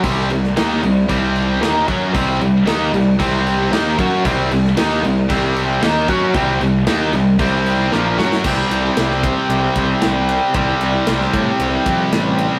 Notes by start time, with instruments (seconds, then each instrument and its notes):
0.04 picked electric bass C2, distorted electric guitar C3 G3 C4, kick, crash
0.30 picked electric bass C2, distorted electric guitar C3 G3, crash
0.44 snare
0.57 picked electric bass D#2, distorted electric guitar D#3 A#3 D#4, snare, crash
0.82 picked electric bass C2, distorted electric guitar C3 G3, crash
1.09 picked electric bass C2, distorted electric guitar C3 G3 C4, kick, crash
1.36 crash
1.61 picked electric bass D#2, distorted electric guitar D#3 A#3 D#4, snare, crash
1.87 picked electric bass F#2, distorted electric guitar F#3 C#4 F#4, kick, crash
2.13 picked electric bass C2, distorted electric guitar C3 G3 C4, kick, crash
2.40 picked electric bass C2, distorted electric guitar C3 G3, crash
2.66 picked electric bass D#2, distorted electric guitar D#3 A#3 D#4, snare, crash
2.92 picked electric bass C2, distorted electric guitar C3 G3, crash
3.19 picked electric bass C2, distorted electric guitar C3 G3 C4, kick, crash
3.47 crash
3.71 picked electric bass D#2, distorted electric guitar D#3 A#3 D#4, snare, crash
3.98 picked electric bass F#2, distorted electric guitar F#3 C#4 F#4, kick, crash
4.25 picked electric bass C2, distorted electric guitar C3 G3 C4, kick, crash
4.51 picked electric bass C2, distorted electric guitar C3 G3, crash
4.65 snare
4.77 picked electric bass D#2, distorted electric guitar D#3 A#3 D#4, snare, crash
5.03 picked electric bass C2, distorted electric guitar C3 G3, crash
5.29 picked electric bass C2, distorted electric guitar C3 G3 C4, kick, crash
5.56 crash
5.82 picked electric bass D#2, distorted electric guitar D#3 A#3 D#4, snare, crash
6.08 picked electric bass F#2, distorted electric guitar F#3 C#4 F#4, kick, crash
6.34 picked electric bass C2, distorted electric guitar C3 G3 C4, kick, crash
6.60 picked electric bass C2, distorted electric guitar C3 G3, crash
6.87 picked electric bass D#2, distorted electric guitar D#3 A#3 D#4, snare, crash
7.13 picked electric bass C2, distorted electric guitar C3 G3, crash
7.39 picked electric bass C2, distorted electric guitar C3 G3 C4, kick, crash
7.66 crash
7.92 picked electric bass A#1, distorted electric guitar A#2 F3 A#3, snare
8.18 picked electric bass F#2, distorted electric guitar F#3 C#4 F#4, snare
8.32 snare
8.44 picked electric bass C2, distorted electric guitar C3 G3 C4, kick, crash
8.71 picked electric bass C2, ride
8.97 picked electric bass C2, snare, ride
9.11 snare
9.24 kick, ride
9.49 picked electric bass C2, ride
9.76 picked electric bass C2, kick, ride
10.02 picked electric bass C2, snare, ride
10.29 ride
10.54 picked electric bass C2, distorted electric guitar C3 G3 C4, kick, ride
10.81 picked electric bass C2, ride
11.07 picked electric bass C2, snare, ride
11.20 snare
11.33 picked electric bass A2, kick, ride
11.60 picked electric bass C2, ride
11.86 picked electric bass F2, kick, ride
12.12 picked electric bass A1, snare, ride
12.38 ride